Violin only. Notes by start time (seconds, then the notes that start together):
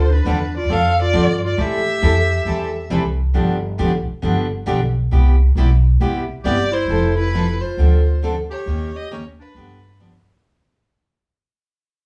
Already playing: C5
0.13 B4
0.57 D5
0.73 F5
1.02 D5
1.47 D5
1.62 E5
6.45 D5
6.73 C5
7.17 B4
7.61 C5
8.51 C#5
8.96 D#5
9.13 C#5
9.41 B4